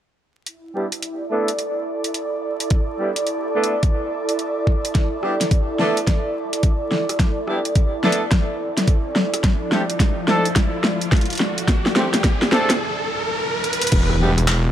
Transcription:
0.46 12.80 E4 medium
0.46 closed hi-hat soft
0.75 0.86 G3 medium
0.75 0.86 B3 medium
0.75 0.86 D4 medium
0.75 0.86 E4 medium
0.75 0.86 G4 medium
0.92 12.80 D5 medium
0.92 closed hi-hat medium
1.02 closed hi-hat soft
1.23 12.80 A4 medium
1.31 1.49 A3 medium
1.31 1.49 B3 medium
1.31 1.49 D4 medium
1.31 1.49 E4 medium
1.31 1.49 A4 medium
1.48 closed hi-hat medium
1.59 closed hi-hat medium
2.04 closed hi-hat medium
2.14 closed hi-hat soft
2.60 closed hi-hat medium
2.70 kick loud
2.70 closed hi-hat medium
2.99 3.10 G3 medium
2.99 3.10 B3 medium
2.99 3.10 D4 medium
2.99 3.10 E4 medium
2.99 3.10 G4 medium
3.16 closed hi-hat medium
3.27 closed hi-hat medium
3.55 3.73 A3 medium
3.55 3.73 B3 medium
3.55 3.73 D4 medium
3.55 3.73 E4 medium
3.55 3.73 A4 medium
3.64 closed hi-hat medium
3.83 kick loud
3.83 closed hi-hat medium
4.29 closed hi-hat medium
4.39 closed hi-hat soft
4.67 kick medium
4.85 closed hi-hat medium
4.95 kick loud
4.95 snare soft
4.95 closed hi-hat soft
4.95 riser medium
5.23 5.34 G3 medium
5.23 5.34 B3 medium
5.23 5.34 D4 medium
5.23 5.34 E4 medium
5.23 5.34 G4 medium
5.23 cross-stick medium
5.41 snare soft
5.41 closed hi-hat medium
5.51 kick medium
5.51 closed hi-hat medium
5.79 5.97 A3 medium
5.79 5.97 B3 medium
5.79 5.97 D4 medium
5.79 5.97 E4 medium
5.79 5.97 A4 loud
5.79 snare soft
5.97 closed hi-hat medium
6.07 kick medium
6.07 snare soft
6.07 closed hi-hat medium
6.53 closed hi-hat medium
6.63 kick loud
6.63 closed hi-hat medium
6.91 snare medium
7.09 cross-stick soft
7.09 closed hi-hat medium
7.19 kick loud
7.19 snare medium
7.19 closed hi-hat medium
7.47 7.59 G3 medium
7.47 7.59 B3 medium
7.47 7.59 D4 medium
7.47 7.59 E4 medium
7.47 7.59 G4 medium
7.47 cross-stick medium
7.65 closed hi-hat medium
7.75 kick medium
7.75 closed hi-hat medium
8.04 8.21 A3 medium
8.04 8.22 B3 medium
8.04 8.21 D4 medium
8.04 8.22 E4 medium
8.04 8.21 A4 loud
8.04 snare medium
8.12 closed hi-hat medium
8.31 kick medium
8.31 snare medium
8.31 closed hi-hat medium
8.77 snare medium
8.77 closed hi-hat medium
8.88 kick loud
8.88 closed hi-hat medium
9.16 snare medium
9.34 cross-stick soft
9.34 closed hi-hat medium
9.44 12.80 F3 medium
9.44 kick loud
9.44 snare medium
9.44 closed hi-hat medium
9.72 9.83 G3 medium
9.72 9.83 A3 medium
9.72 9.83 C4 medium
9.72 9.83 D4 medium
9.72 9.83 G4 medium
9.72 snare medium
9.90 closed hi-hat medium
10.00 kick loud
10.00 snare medium
10.00 closed hi-hat medium
10.28 10.46 A3 medium
10.28 10.46 C4 medium
10.28 10.46 D4 medium
10.28 10.46 A4 loud
10.28 snare medium
10.45 closed hi-hat medium
10.56 kick loud
10.56 snare medium
10.56 closed hi-hat medium
10.84 snare medium
11.01 closed hi-hat medium
11.12 kick loud
11.12 snare medium
11.12 closed hi-hat soft
11.16 closed hi-hat soft
11.21 closed hi-hat soft
11.25 closed hi-hat soft
11.30 closed hi-hat soft
11.33 closed hi-hat soft
11.35 closed hi-hat soft
11.38 snare medium
11.38 closed hi-hat soft
11.58 closed hi-hat medium
11.68 kick loud
11.68 snare medium
11.68 closed hi-hat medium
11.86 snare medium
11.96 12.07 G3 medium
11.96 12.07 A3 medium
11.96 12.07 C4 medium
11.96 12.07 D4 medium
11.96 12.07 G4 medium
11.96 snare loud
12.14 snare medium
12.14 closed hi-hat medium
12.24 kick loud
12.24 snare medium
12.24 closed hi-hat medium
12.42 snare medium
12.52 12.70 A3 medium
12.52 12.70 C4 medium
12.52 12.70 D4 medium
12.52 12.70 A4 loud
12.52 snare loud
12.70 snare medium
12.70 closed hi-hat medium
13.64 closed hi-hat medium
13.73 closed hi-hat medium
13.82 closed hi-hat medium
13.87 closed hi-hat medium
13.92 14.72 E1 loud
13.92 kick loud
13.92 closed hi-hat medium
13.92 crash loud
13.92 impact medium
14.10 cross-stick soft
14.20 14.32 G3 medium
14.20 14.32 B3 medium
14.20 14.32 D4 medium
14.20 14.32 E4 medium
14.20 14.32 G4 medium
14.38 cross-stick soft
14.38 closed hi-hat medium
14.48 clap loud
14.48 closed hi-hat medium

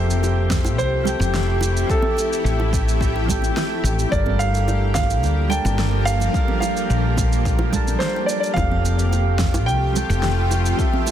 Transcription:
0.00 0.78 F1 medium
0.00 1.02 F3 medium
0.00 4.07 A3 medium
0.00 1.02 C4 medium
0.00 4.07 E4 medium
0.00 1.03 G4 medium
0.00 8.52 G4 medium
0.00 1.03 A4 medium
0.00 0.77 C5 loud
0.00 1.04 E5 medium
0.11 shaker soft
0.23 high bongo medium
0.23 shaker soft
0.50 kick loud
0.50 snare medium
0.50 high conga medium
0.50 shaker medium
0.65 high bongo medium
0.65 shaker soft
0.78 1.13 C2 medium
0.78 1.93 C5 medium
0.78 shaker soft
1.04 1.85 F3 medium
1.04 1.86 C4 medium
1.04 1.86 G4 medium
1.04 1.87 A4 medium
1.04 low conga medium
1.04 shaker medium
1.09 1.88 G5 medium
1.19 1.83 F1 medium
1.19 high bongo soft
1.19 high conga medium
1.19 shaker soft
1.34 snare medium
1.34 shaker soft
1.61 high bongo medium
1.61 shaker medium
1.77 shaker soft
1.86 3.24 F3 medium
1.86 3.24 C4 medium
1.86 3.25 G4 medium
1.86 3.25 A4 medium
1.86 kick loud
1.86 shaker soft
1.90 2.97 A4 medium
1.90 3.26 E5 medium
2.02 high conga medium
2.17 high bongo soft
2.17 shaker medium
2.33 shaker soft
2.44 3.49 A1 medium
2.44 shaker soft
2.60 high bongo medium
2.73 kick loud
2.73 high conga medium
2.73 shaker medium
2.89 shaker soft
3.01 kick loud
3.01 shaker soft
3.16 high bongo soft
3.26 4.07 F3 medium
3.26 4.08 C4 medium
3.26 4.09 G4 medium
3.26 4.09 A4 medium
3.26 kick medium
3.26 low conga medium
3.26 shaker medium
3.31 4.10 G5 medium
3.42 high conga medium
3.42 shaker soft
3.57 snare medium
3.57 high bongo medium
3.57 shaker soft
3.84 4.04 A1 medium
3.84 shaker medium
3.99 shaker soft
4.09 5.23 G1 medium
4.09 8.52 F3 medium
4.09 5.46 G3 medium
4.09 8.52 A#3 medium
4.09 5.47 D4 medium
4.09 5.47 A4 medium
4.09 5.48 A#4 medium
4.09 4.40 D5 medium
4.09 kick loud
4.09 shaker soft
4.14 5.48 F5 medium
4.26 high bongo soft
4.26 high conga medium
4.39 4.93 F5 loud
4.39 shaker medium
4.55 shaker soft
4.68 high bongo medium
4.68 shaker soft
4.94 5.46 F5 medium
4.94 kick loud
4.94 snare medium
4.94 high conga medium
4.94 shaker medium
5.10 shaker soft
5.23 5.58 D2 medium
5.23 high bongo soft
5.23 shaker soft
5.48 6.29 G3 medium
5.48 6.30 D4 medium
5.48 6.31 A4 medium
5.48 6.31 A#4 medium
5.48 6.07 G5 loud
5.48 low conga medium
5.52 6.32 A5 medium
5.52 shaker medium
5.65 6.28 G1 medium
5.65 high bongo medium
5.65 high conga medium
5.65 shaker soft
5.79 snare medium
5.79 shaker soft
6.05 6.57 F5 loud
6.05 shaker medium
6.20 high bongo soft
6.20 shaker soft
6.31 7.68 G3 medium
6.31 7.69 D4 medium
6.31 7.70 A4 medium
6.31 7.70 A#4 medium
6.31 kick loud
6.31 shaker soft
6.36 7.71 F5 medium
6.48 high conga medium
6.60 8.04 F5 medium
6.60 high bongo medium
6.60 shaker medium
6.77 shaker soft
6.90 7.94 A#1 medium
6.90 shaker soft
7.17 kick loud
7.17 high bongo soft
7.17 high conga medium
7.17 shaker medium
7.32 shaker soft
7.45 kick medium
7.45 shaker soft
7.59 high bongo medium
7.70 8.52 G3 medium
7.70 8.52 D4 medium
7.70 8.53 A4 medium
7.70 8.54 A#4 medium
7.70 kick medium
7.70 low conga medium
7.70 shaker medium
7.76 8.54 A5 medium
7.87 high conga medium
7.87 shaker soft
7.99 8.28 C5 medium
7.99 snare medium
7.99 shaker soft
8.16 high bongo soft
8.26 8.39 D5 medium
8.26 shaker medium
8.40 8.54 D5 medium
8.40 shaker soft
8.54 9.67 F1 loud
8.54 9.91 F3 medium
8.54 11.11 A3 medium
8.54 9.91 C4 medium
8.54 11.11 F4 medium
8.54 9.92 G4 medium
8.54 10.76 G4 medium
8.54 9.92 A4 medium
8.54 9.62 F5 loud
8.54 kick loud
8.54 high bongo medium
8.54 shaker soft
8.59 9.93 F5 medium
8.71 high conga medium
8.85 shaker medium
8.99 shaker soft
9.13 high bongo medium
9.13 shaker soft
9.39 kick medium
9.39 snare medium
9.39 high conga medium
9.39 shaker medium
9.54 high bongo medium
9.54 shaker soft
9.66 10.02 C2 medium
9.66 11.11 G5 medium
9.66 shaker soft
9.92 10.74 F3 medium
9.92 10.74 C4 medium
9.92 10.75 G4 medium
9.92 10.76 A4 medium
9.92 low conga medium
9.92 shaker medium
9.98 10.76 G5 medium
10.09 10.72 F1 medium
10.09 high bongo soft
10.09 high conga medium
10.09 shaker soft
10.23 snare medium
10.23 shaker soft
10.51 high bongo medium
10.51 shaker medium
10.66 shaker soft
10.76 11.11 F3 medium
10.76 11.11 C4 medium
10.76 11.11 G4 medium
10.76 11.11 A4 medium
10.76 kick loud
10.76 shaker soft
10.81 11.11 E5 medium
10.93 high conga medium
11.06 high bongo soft
11.06 shaker medium

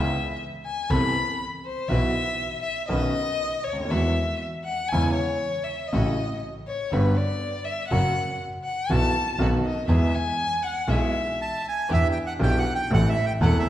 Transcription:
0.00 0.10 C#2 medium
0.00 0.11 C#2 medium
0.00 0.10 C#3 medium
0.00 0.10 E3 medium
0.00 0.10 B3 medium
0.00 0.10 C#4 medium
0.00 0.11 C#4 medium
0.00 0.11 E4 medium
0.00 0.10 G#4 medium
0.00 0.11 B4 medium
0.00 0.36 E5 medium
0.65 0.92 G#5 medium
0.90 1.11 C2 medium
0.90 1.11 C3 medium
0.90 1.11 E3 medium
0.90 1.11 B3 medium
0.90 1.11 C4 medium
0.90 1.11 A4 medium
0.90 1.11 B4 medium
0.90 1.40 B5 loud
1.66 1.90 C5 medium
1.89 2.10 B1 medium
1.89 2.11 B1 medium
1.89 2.11 B2 medium
1.89 2.11 E3 medium
1.89 2.11 F#3 medium
1.89 2.11 B3 medium
1.89 2.10 E4 medium
1.89 2.10 F#4 medium
1.89 2.11 F#4 medium
1.89 2.10 B4 medium
1.89 2.62 E5 medium
2.63 2.87 E5 medium
2.88 3.11 B1 medium
2.88 3.11 B2 medium
2.88 3.10 D#3 medium
2.88 3.10 B3 medium
2.88 3.10 C#4 medium
2.88 3.10 D#4 medium
2.88 3.11 F#4 medium
2.88 3.11 B4 medium
2.88 3.65 D#5 loud
3.64 3.91 D2 soft
3.64 3.92 C#5 medium
3.73 3.79 C#2 soft
3.80 3.85 D2 medium
3.85 3.91 D#2 medium
3.90 4.12 E2 medium
3.90 4.13 E2 medium
3.90 4.13 E3 medium
3.90 4.12 G#3 medium
3.90 4.13 G#3 soft
3.90 4.13 B3 medium
3.90 4.12 E4 medium
3.90 4.12 F#4 medium
3.90 4.13 F#4 medium
3.90 4.42 E5 medium
4.65 4.90 F#5 medium
4.89 5.14 E2 medium
4.89 5.14 C#3 medium
4.89 5.14 E3 medium
4.89 5.14 G#3 medium
4.89 5.14 B3 medium
4.89 5.14 E4 medium
4.89 5.13 G#5 loud
4.93 5.14 E2 medium
4.93 5.14 C#4 medium
4.93 5.14 E4 medium
5.14 5.66 C#5 medium
5.64 5.89 E5 medium
5.88 6.40 D#5 medium
5.92 6.14 A1 medium
5.92 6.14 A2 medium
5.92 6.13 C#3 medium
5.92 6.14 F#3 medium
5.92 6.13 A3 medium
5.92 6.14 A3 medium
5.92 6.14 C#4 medium
5.92 6.14 E4 medium
5.92 6.14 F#4 medium
6.68 6.95 C#5 medium
6.91 7.12 G1 medium
6.91 7.13 G1 medium
6.91 7.13 G2 medium
6.91 7.13 D3 medium
6.91 7.12 G3 medium
6.91 7.13 G3 medium
6.91 7.12 B3 medium
6.91 7.13 B3 medium
6.91 7.12 F#4 medium
6.91 7.13 F#4 medium
6.91 7.19 B4 medium
7.17 7.66 D5 medium
7.65 7.88 E5 medium
7.89 8.12 F#1 medium
7.89 8.12 F#2 medium
7.89 8.11 C#3 medium
7.89 8.12 F#3 medium
7.89 8.11 A#3 medium
7.89 8.11 C#4 medium
7.89 8.11 F#4 medium
7.89 8.35 F#5 loud
8.64 8.92 F#5 medium
8.90 9.10 B1 medium
8.90 9.10 B2 medium
8.90 9.10 E3 medium
8.90 9.10 F#3 medium
8.90 9.10 B3 medium
8.90 9.10 E4 medium
8.90 9.10 F#4 medium
8.90 9.39 A5 loud
9.39 9.59 B1 medium
9.39 9.60 B2 medium
9.39 9.59 D#3 medium
9.39 9.59 F#3 medium
9.39 9.59 B3 medium
9.39 9.59 D#4 medium
9.39 9.59 F#4 medium
9.39 9.60 F#4 medium
9.65 9.87 D#5 medium
9.87 10.08 E2 medium
9.87 10.09 E2 medium
9.87 10.09 E3 medium
9.87 10.08 G#3 medium
9.87 10.08 B3 medium
9.87 10.09 B3 medium
9.87 10.08 E4 medium
9.87 10.08 G#4 medium
9.87 10.09 G#4 medium
9.87 10.16 E5 medium
10.15 10.65 G#5 medium
10.63 10.90 F#5 medium
10.88 11.09 B1 medium
10.88 11.10 B2 medium
10.88 11.09 E3 medium
10.88 11.09 G#3 medium
10.88 11.09 B3 medium
10.88 11.10 B3 medium
10.88 11.09 E4 medium
10.88 11.10 G#4 medium
10.88 11.65 E5 medium
11.42 11.67 A5 medium
11.68 11.90 G#5 medium
11.89 12.11 E2 medium
11.89 12.12 E2 medium
11.89 12.11 E3 medium
11.89 12.11 B3 medium
11.89 12.11 D4 medium
11.89 12.11 E4 medium
11.89 12.11 G4 medium
11.93 12.08 E5 loud
12.12 12.18 G5 medium
12.26 12.33 F#5 medium
12.39 12.61 B1 medium
12.39 12.62 B1 medium
12.39 12.61 B2 medium
12.39 12.61 E3 medium
12.39 12.61 B3 medium
12.39 12.61 D4 medium
12.39 12.62 D4 medium
12.39 12.62 E4 medium
12.39 12.61 G4 medium
12.39 12.62 G4 medium
12.39 12.59 G5 medium
12.59 12.74 F#5 medium
12.75 12.92 G5 medium
12.90 13.12 A1 medium
12.90 13.12 A1 loud
12.90 13.12 A2 medium
12.90 13.12 E3 medium
12.90 13.12 A3 medium
12.90 13.12 C4 medium
12.90 13.12 E4 medium
12.90 13.12 A4 medium
12.90 13.09 F#5 loud
13.09 13.25 E5 medium
13.26 13.33 G5 medium
13.41 13.61 E1 medium
13.41 13.62 E2 medium
13.41 13.62 E3 medium
13.41 13.61 A3 medium
13.41 13.61 C4 medium
13.41 13.62 C4 medium
13.41 13.62 E4 medium
13.41 13.62 A4 medium
13.41 13.58 F#5 medium
13.59 13.69 E5 medium

